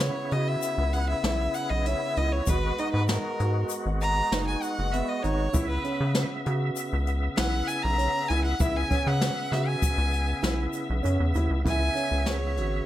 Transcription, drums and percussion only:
0.00 snare, closed hi-hat, shaker
0.31 closed hi-hat
0.62 closed hi-hat, shaker
0.93 closed hi-hat, shaker
1.24 snare, closed hi-hat
1.54 closed hi-hat, shaker
1.86 closed hi-hat
2.16 closed hi-hat
2.46 kick, closed hi-hat, shaker
2.78 closed hi-hat
3.08 snare, closed hi-hat, shaker
3.39 closed hi-hat
3.69 closed hi-hat, shaker
4.01 closed hi-hat, shaker
4.32 snare, closed hi-hat
4.62 closed hi-hat, shaker
4.93 closed hi-hat
5.24 closed hi-hat
5.54 kick, closed hi-hat, shaker
5.84 closed hi-hat
6.14 snare, closed hi-hat, shaker
6.46 closed hi-hat
6.76 closed hi-hat, shaker
7.07 closed hi-hat, shaker
7.37 snare, closed hi-hat
7.68 closed hi-hat, shaker
7.99 closed hi-hat
8.29 closed hi-hat
8.60 kick, closed hi-hat, shaker
8.91 kick, closed hi-hat, shaker
9.21 snare, closed hi-hat, shaker
9.53 snare, closed hi-hat
9.82 kick, closed hi-hat, shaker
10.12 closed hi-hat, shaker
10.43 snare, closed hi-hat, shaker
10.73 closed hi-hat, shaker
11.03 closed hi-hat, shaker
11.34 closed hi-hat, shaker
11.66 kick, closed hi-hat
11.96 closed hi-hat
12.26 snare, closed hi-hat
12.57 closed hi-hat

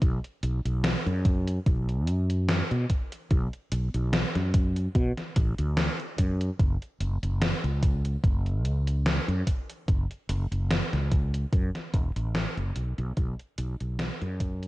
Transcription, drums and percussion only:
0.02 kick, closed hi-hat
0.24 closed hi-hat
0.43 closed hi-hat
0.66 closed hi-hat
0.84 snare, closed hi-hat
1.07 closed hi-hat
1.25 kick, closed hi-hat
1.48 closed hi-hat
1.66 kick, closed hi-hat
1.89 closed hi-hat
2.07 closed hi-hat
2.30 closed hi-hat
2.48 snare, closed hi-hat
2.71 closed hi-hat
2.89 kick, closed hi-hat
3.12 closed hi-hat
3.31 kick, closed hi-hat
3.53 closed hi-hat
3.72 closed hi-hat
3.94 closed hi-hat
4.13 snare, closed hi-hat
4.35 snare, closed hi-hat
4.54 kick, closed hi-hat
4.76 closed hi-hat
4.95 kick, closed hi-hat
5.17 snare, closed hi-hat
5.36 kick, closed hi-hat
5.58 closed hi-hat
5.77 snare, closed hi-hat
5.99 closed hi-hat
6.18 kick, closed hi-hat
6.41 closed hi-hat
6.59 kick, closed hi-hat
6.82 closed hi-hat
7.01 closed hi-hat
7.23 closed hi-hat
7.42 snare, closed hi-hat
7.64 closed hi-hat
7.83 kick, closed hi-hat
8.05 closed hi-hat
8.24 kick, closed hi-hat
8.46 closed hi-hat
8.65 closed hi-hat
8.87 closed hi-hat
9.06 snare, closed hi-hat
9.29 closed hi-hat
9.47 kick, closed hi-hat
9.70 closed hi-hat
9.88 kick, closed hi-hat
10.11 closed hi-hat
10.29 closed hi-hat
10.52 closed hi-hat
10.70 snare, closed hi-hat
10.93 snare, closed hi-hat
11.11 kick, closed hi-hat
11.34 closed hi-hat
11.53 kick, closed hi-hat
11.75 snare, closed hi-hat
11.94 kick, closed hi-hat
12.16 closed hi-hat
12.35 snare, closed hi-hat
12.57 closed hi-hat
12.76 closed hi-hat
12.98 closed hi-hat
13.17 kick, closed hi-hat
13.39 closed hi-hat
13.58 closed hi-hat
13.80 closed hi-hat
13.99 snare, closed hi-hat
14.22 closed hi-hat
14.40 kick, closed hi-hat
14.63 closed hi-hat

